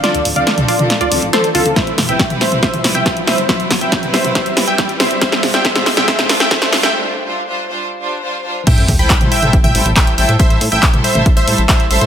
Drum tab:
CC |----------------|----------------|----------------|----------------|
HH |xxoxxxoxxxoxxxox|xxoxxxoxxxoxxxox|xxoxxxoxxxoxxxox|xxoxxxoxxxoxxxox|
CP |----------------|----------------|----------------|----------------|
SD |o---o---o---o---|o-o-o-o-o-o-o-o-|o-o-o-o-o-o-o-o-|oooooooooooooooo|
T2 |-----o-o--------|--o--o-o-o------|-----o-o--------|--o--o-o-o------|
BD |----------------|o---o---o---o---|o-o-o---o---o---|o---o---o---o---|

CC |----------------|x---------------|----------------|
HH |----------------|xxoxxxoxxxoxxxox|xxoxxxoxxxoxxxox|
CP |----------------|----x-------x---|----x-------x---|
SD |----------------|----------------|----------------|
T2 |----------------|--o--o-o-o------|-----o-o--------|
BD |----------------|o-o-o---o---o---|o---o---o---o---|